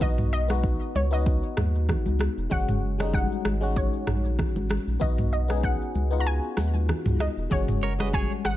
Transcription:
0.00 B1 B3 D#4 F#4 D#5, kick, low conga, shaker
0.18 mid tom, high conga, shaker
0.33 D#5
0.48 B3 D#4 F#4, cross-stick, high conga, shaker
0.63 kick, shaker
0.82 shaker
0.95 C#2 C#5, high conga
1.11 B3 D#4 F#4 D#5, shaker
1.26 kick, shaker
1.43 shaker
1.57 D#2, cross-stick, mid tom, high conga
1.75 shaker
1.89 kick, cross-stick, low conga, shaker
2.06 C#2, high conga, shaker
2.19 cross-stick, high conga
2.37 E1, shaker
2.50 F#1 G#3 C#4 F#4 F#5, kick, low conga, shaker
2.68 mid tom, high conga, shaker
2.98 G3 C#4 D#4, cross-stick, high conga, shaker
3.05 G#3
3.14 F#5, kick, shaker
3.32 shaker
3.45 G#1, cross-stick, high conga
3.61 G#3 C#4 F#4, shaker
3.76 C#5, kick, shaker
3.93 shaker
4.07 A#1, cross-stick, mid tom, high conga
4.25 shaker
4.39 kick, cross-stick, low conga, shaker
4.56 G#1, high conga, shaker
4.70 cross-stick, high conga
4.87 A#1, shaker
5.00 B1 B3 D#4 F#4 D#5, kick, low conga, shaker
5.18 mid tom, high conga, shaker
5.33 D#5, shaker
5.48 B3 C#4 G#4, cross-stick, high conga, shaker
5.56 D#4
5.63 F#5, kick, shaker
5.82 shaker
5.94 C#2, high conga, shaker
6.11 B3 D#4 F4, shaker
6.20 F#4 A#5
6.26 G#5, shaker
6.43 shaker
6.57 D#2, cross-stick, open hi-hat, high conga, shaker
6.74 high conga, shaker
6.88 cross-stick, low conga, shaker
7.06 C#2, mid tom, high conga, shaker
7.19 D#5, cross-stick, high conga, shaker
7.37 E1, shaker
7.50 F#1 G#3 C#4 F#4 C#5, kick, low conga, shaker
7.68 mid tom, high conga, shaker
7.83 A#4 C#5
7.98 G3 C#4 F#4 B4 D#5, cross-stick, high conga, shaker
8.05 G#3
8.13 G#4 C#5 G#5, kick, shaker
8.32 shaker
8.45 G#1 F#5, cross-stick, high conga

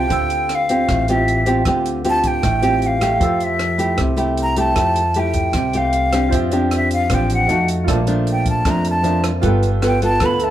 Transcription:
Already playing: C4 F4 G4 G5
0.08 D2 D3 F4 C5, kick, closed hi-hat
0.12 G5 E6
0.30 closed hi-hat
0.49 cross-stick, closed hi-hat
0.55 F5
0.69 C4 F4 G4, closed hi-hat
0.89 A1 A2, kick, cross-stick, closed hi-hat
1.08 C4 F4 G4 E5, closed hi-hat
1.28 closed hi-hat
1.46 C4 F4 G4, closed hi-hat
1.65 D2 D3 C4 F4 G4, kick, cross-stick, closed hi-hat
1.86 closed hi-hat
2.04 C4 F4 G4, closed hi-hat
2.09 A5
2.24 G5, kick, closed hi-hat
2.42 A1 A2, kick, cross-stick, closed hi-hat
2.62 C4 F4 G4, closed hi-hat
2.82 closed hi-hat
2.87 F5
3.01 A3 G4, cross-stick, closed hi-hat
3.20 F2 F3 A4 E6, kick, closed hi-hat
3.25 G5
3.40 E5, closed hi-hat
3.59 cross-stick, closed hi-hat
3.78 A3 E4 G4, closed hi-hat
3.98 C2 C3, kick, cross-stick, closed hi-hat
4.16 A3 E4 G4, closed hi-hat
4.37 closed hi-hat
4.43 A#5
4.56 A3 E4 G4 A5, closed hi-hat
4.76 F2 F3 A3 E4 G4, kick, cross-stick, closed hi-hat
4.96 closed hi-hat
5.14 A3 E4 G4, closed hi-hat
5.19 G5
5.34 kick, closed hi-hat
5.53 C2 C3, kick, cross-stick, closed hi-hat
5.73 A3 G4 F5, closed hi-hat
5.93 closed hi-hat
6.12 C4 D4 G4, cross-stick, closed hi-hat
6.29 F2 F4 C5, kick, closed hi-hat
6.33 F3 E5 G5
6.51 C4 D4 G4, closed hi-hat
6.71 cross-stick, closed hi-hat
6.76 E5
6.91 F5, closed hi-hat
7.10 A1 F3 C4 D4 G4, kick, cross-stick, closed hi-hat
7.15 G5
7.30 closed hi-hat
7.34 F#5
7.47 F2 A3 D#4 F#4 D#5 F5 A5, closed hi-hat
7.68 closed hi-hat
7.84 A#1 A#2 F3 A3 A#3 D4 F4 D5, kick
7.88 A5, cross-stick, closed hi-hat
8.07 F3 A3 D4, closed hi-hat
8.27 closed hi-hat
8.32 G5
8.46 kick, closed hi-hat
8.50 A5
8.65 F2 F3 A3 D4, kick, cross-stick, closed hi-hat
8.70 A#5
8.85 closed hi-hat
8.90 A5
9.03 F3 A3 D4 F4 A#4 D5 A5, closed hi-hat
9.24 cross-stick, closed hi-hat
9.41 G1 G3 B3 F4 A4, kick, closed hi-hat
9.45 B4 G5
9.63 closed hi-hat
9.82 B3 F4 A4, cross-stick, closed hi-hat
9.87 G5
10.02 B3 F4 A4 A5, closed hi-hat
10.20 D2 D3 B3 F4 A4, kick, cross-stick, closed hi-hat
10.25 B5
10.40 F4 A4 B4 E5, closed hi-hat
10.44 A5

